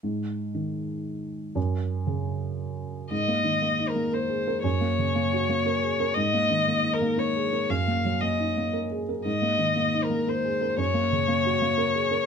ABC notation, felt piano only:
X:1
M:3/4
L:1/8
Q:1/4=118
K:Abmix
V:1 name="Felt piano"
A,,2 E,4 | G,,2 D,4 | (3A,, B, E, (3B, E B, (3B A B | (3G,, B, D, (3B, G B, (3B A B |
(3A,, B, E, (3B, E B, (3B A B | (3G,, B, G, (3B, E B, (3B A B | (3A,, B, E, (3B, E B, (3B A B | (3G,, B, D, (3B, G B, (3B A B |]